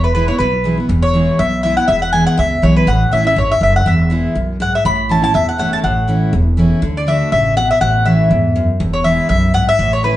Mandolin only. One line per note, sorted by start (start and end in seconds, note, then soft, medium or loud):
0.04 0.13 B4 medium
0.15 0.28 B4 medium
0.28 0.38 C#5 medium
0.38 0.75 B4 medium
1.02 1.40 C#5 medium
1.39 1.62 E5 loud
1.63 1.76 E5 medium
1.77 1.87 F#5 loud
1.88 2.01 E5 medium
2.02 2.12 F#5 medium
2.13 2.26 G#5 medium
2.27 2.37 F#5 loud
2.39 2.64 E5 medium
2.63 2.76 C#5 medium
2.76 2.88 B4 medium
2.88 3.11 F#5 medium
3.13 3.25 E5 medium
3.27 3.37 E5 medium
3.38 3.52 C#5 medium
3.51 3.61 E5 medium
3.63 3.76 E5 medium
3.76 3.86 F#5 medium
3.87 4.33 E5 medium
4.62 4.74 F#5 medium
4.75 4.85 E5 medium
4.86 5.09 B5 loud
5.11 5.22 A5 medium
5.24 5.34 A5 loud
5.35 5.47 E5 medium
5.49 5.58 F#5 medium
5.59 5.72 F#5 medium
5.73 5.78 A5 medium
5.84 6.30 F#5 medium
6.97 7.08 D5 medium
7.08 7.31 E5 medium
7.32 7.55 E5 medium
7.57 7.70 F#5 loud
7.71 7.81 E5 medium
7.81 8.04 F#5 loud
8.05 8.65 E5 medium
8.93 9.04 C#5 medium
9.04 9.28 E5 medium
9.29 9.52 E5 loud
9.54 9.67 F#5 loud
9.69 9.91 E5 loud
9.93 10.03 C#5 medium
10.04 10.17 B4 medium